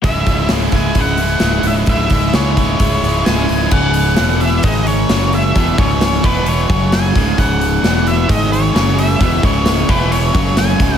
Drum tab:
CC |--------|--------|x-------|--------|
HH |oooooooo|oooooooo|-ooooooo|oooooooo|
SD |--o---o-|--o---o-|--o---o-|--o---o-|
BD |oo-oo---|oo-oo---|o---o---|oo-o-o-o|

CC |--------|--------|
HH |oooooooo|oooooooo|
SD |--o---o-|--o---o-|
BD |o---o---|oo-o-o-o|